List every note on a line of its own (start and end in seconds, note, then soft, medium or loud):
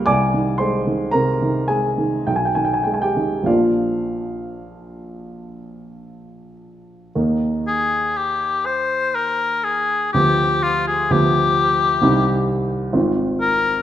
0.00 0.11 C#2 medium
0.00 0.12 G3 soft
0.00 0.12 A#3 soft
0.00 0.12 F4 medium
0.00 0.11 G4 medium
0.00 0.12 C#5 medium
0.00 0.12 F5 medium
0.00 0.11 G5 medium
0.06 2.24 C2 medium
0.06 0.57 D5 medium
0.06 0.57 G#5 medium
0.06 0.61 D6 medium
0.34 0.77 D#3 soft
0.58 1.04 G#3 soft
0.58 1.11 C5 soft
0.58 1.14 C6 medium
0.87 1.32 D#3 soft
1.11 1.59 C3 soft
1.11 1.66 A#4 medium
1.11 1.69 A#5 medium
1.42 1.88 D#3 soft
1.68 2.16 G#3 soft
1.68 2.23 G#4 soft
1.68 2.27 G#5 medium
1.98 2.28 D#3 soft
2.27 3.43 B1 medium
2.27 2.37 G5 medium
2.36 2.46 G#5 medium
2.45 2.56 G5 medium
2.55 3.04 D#3 soft
2.55 2.65 G#5 medium
2.65 2.75 G5 medium
2.74 2.84 G#5 medium
2.83 3.35 G#3 soft
2.83 2.94 G5 medium
2.94 3.04 G#5 medium
3.02 3.44 G4 soft
3.02 3.46 G5 medium
3.17 3.47 D#3 soft
3.43 7.09 A#1 soft
3.43 7.09 F3 soft
3.43 7.10 A#3 soft
3.43 7.11 D4 soft
3.43 6.53 F4 soft
3.43 6.57 F5 medium
3.47 6.53 D5 soft
7.15 10.11 D#2 soft
7.15 10.11 D#3 soft
7.15 10.11 A#3 soft
7.15 10.11 D#4 soft
7.67 8.19 G#4 medium
8.17 8.67 G4 medium
8.66 9.16 C5 medium
9.15 9.65 A#4 medium
9.63 10.12 G#4 medium
10.13 11.08 D2 soft
10.13 11.08 F3 soft
10.13 11.08 B3 soft
10.13 10.65 G4 medium
10.13 11.08 G4 soft
10.63 10.87 F4 medium
10.87 11.14 G#4 medium
11.11 12.00 D2 medium
11.11 12.00 F3 soft
11.11 12.00 B3 soft
11.11 12.00 G4 soft
11.11 12.49 G4 medium
12.01 12.91 C2 medium
12.01 12.91 D#3 medium
12.01 12.91 C4 soft
12.01 12.91 G4 medium
12.93 13.82 G#1 medium
12.93 13.82 D#3 soft
12.93 13.82 C4 soft
12.93 13.82 F4 soft
13.41 13.82 A#4 medium